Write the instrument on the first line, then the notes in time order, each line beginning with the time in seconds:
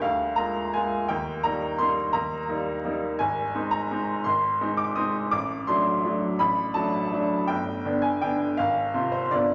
upright piano
0.02 D2 F5
0.36 G#3 A#3 F4 A#5
0.74 G#3 A#3 F4 G#5
1.08 D#2 G5
1.43 G3 A#3 D#4 A#5
1.78 G3 A#3 D#4 C6
2.13 D#2 A#5
2.49 G3 A#3 D#4
2.85 G3 A#3 D#4
3.19 G#1 G#5
3.55 G#3 C4 D#4
3.71 A#5
3.91 G#3 C4 D#4
4.24 G#1 C6
4.61 G#3 C4 D#4
4.77 D6
4.96 G#3 C4 D#4 D#6
5.31 A1 D6
5.67 F#3 A3 D4 C6
6.05 F#3 A3 D4
6.39 A1 B5
6.74 F#3 A3 D4 A5
7.12 F#3 A3 D4
7.47 G1 G5
7.85 D3 B3 D4
8.02 G#5
8.21 D3 B3 D4 G5
8.57 G#1 F5
8.94 C3 C4 F4
9.12 C5
9.31 G1 D3 B3 F4 D5